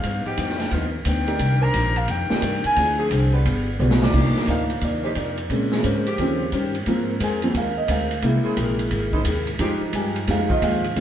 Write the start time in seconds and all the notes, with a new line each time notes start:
Already playing: F5
0.03 G2 F3 B3 D#4, kick, ride
0.25 F3 B3 D#4 G4 G5, muted upright bass stroke
0.37 F2 G2 F3 B3 D#4, kick, hi-hat pedal, ride
0.49 snare
0.60 snare, ride
0.71 D#2 G2 F3 B3 D#4 F4, kick, ride
1.05 D2 G2 F3 B3 D#4 G5, kick, hi-hat pedal, ride
1.27 C4 D#4 G4 A#4 D5, ride
1.39 C2 C3 D#3 A#3 D4, kick, ride
1.60 D#3 C4 D4 A#4 A#5
1.74 A#1 C3 D#3 A#3 D4, kick, hi-hat pedal, ride
1.96 F5, ride
2.08 F2 C3 D#3 A#3 D4 G5, kick, ride
2.30 C4 D#4 G4 A#4 D5, muted upright bass stroke, snare
2.42 G2 C3 D#3 A#3 D4, kick, hi-hat pedal, ride
2.64 G#5, muted upright bass stroke, ride
2.76 D2 D3 C4 E4 F4 G#4 D5, kick, ride
2.98 F3 C4 D4 G#4
3.11 C2 D3 C4 F4 G#4, kick, hi-hat pedal, ride
3.32 G3 B3 F4 B4
3.45 G1 G3 B3 F4 G#4, kick, ride
3.79 B1 G3 B3 F4 G4 G#4 D5, hi-hat pedal, mid tom
3.91 snare
4.01 C3 F3 G4 D5, snare
4.13 C2 C3 F3 A#3 D4 D#4 F4, kick, crash
4.36 muted upright bass stroke, snare
4.47 D2 C3 F3 A#3 D4 D#4 F4 A#4 F5, kick, hi-hat pedal, ride
4.70 ride
4.81 D#2 C3 A#3 D#4 F4 D5, kick, ride
5.03 F3 D4 D#4 G4 C5
5.15 F2 C3 A#3 D#4 F4 D5, kick, hi-hat pedal, ride
5.38 ride
5.49 A#2 C#3 G#3 A#3 C4 C#4 G#4 C5, kick, ride
5.71 C#3 A#3 C4 G#4, snare
5.83 G#2 A#3 C#4 G#4 C5, kick, hi-hat pedal, ride
6.06 F3 C4 G4, ride
6.18 D#2 C#3 D#3 F3 G3 C4 C#4 G4 C5, kick, ride
6.52 G2 D#3 C#4 G4 C5, kick, hi-hat pedal, ride
6.75 ride
6.86 G#2 F3 G#3 A#3 C4 F4 A#4, kick, ride
7.20 F2 F3 G#3 A#3 C4 F4 G#4 A#4 G#5, kick, hi-hat pedal, ride
7.42 F3 A#3 C4, ride
7.54 D#2 G#3 C4 F4 A#4 F5, kick, ride
7.78 D#5
7.88 D2 G#3 C4 F4 A#4 F5, kick, hi-hat pedal, ride
8.11 ride
8.22 C2 C3 G#3 A#3 E4 G#4, kick, ride
8.44 E3 A#3 C4 G#4, muted upright bass stroke
8.56 A#1 C3 A#3 E4 G#4, kick, hi-hat pedal, ride
8.79 ride
8.90 G#1 C3 A#3 E4 G#4, kick, ride
9.12 E3 A#3 C4 D#4, kick
9.25 D#2 C3 A#3 E4 G#4, kick, hi-hat pedal, ride
9.47 ride
9.59 F2 F3 G3 G#3 D#4 G4, kick, ride
9.81 muted upright bass stroke
9.93 G2 F3 G#3 D#4 G4 G#5, kick, hi-hat pedal, ride
10.16 ride
10.27 F2 F3 G3 G#3 D#4 G4 F5, kick, snare, ride
10.48 F3 D#4 F4 D#5, kick
10.62 D#2 F3 G#3 D#4 G4 F5, kick, hi-hat pedal, ride
10.84 ride
10.96 D2 D3 F3 G#3 C4, kick, ride